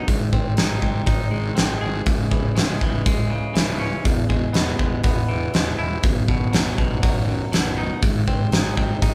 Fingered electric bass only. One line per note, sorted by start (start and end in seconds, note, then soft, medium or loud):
0.08 0.26 G#1 medium
0.33 0.51 G#1 medium
0.58 0.76 G#1 medium
0.82 1.01 G#1 medium
1.07 1.25 G#1 medium
1.32 1.50 G#1 medium
1.57 1.75 G#1 medium
1.82 2.00 G#1 medium
2.07 2.25 C#1 medium
2.32 2.50 C#1 medium
2.56 2.74 C#1 medium
2.81 2.99 C#1 medium
3.06 3.43 C#1 medium
3.56 3.92 C#1 medium
4.05 4.23 E1 medium
4.30 4.48 E1 medium
4.55 4.73 E1 medium
4.79 4.98 E1 medium
5.04 5.22 E1 medium
5.29 5.47 E1 medium
5.54 5.72 E1 medium
5.79 5.97 E1 medium
6.03 6.22 B0 medium
6.28 6.47 B0 medium
6.53 6.71 B0 medium
6.78 6.97 B0 medium
7.03 7.40 B0 medium
7.52 7.89 B0 medium
8.02 8.21 G#1 medium
8.28 8.46 G#1 medium
8.52 8.70 G#1 medium
8.78 8.96 G#1 medium
9.02 9.14 G#1 medium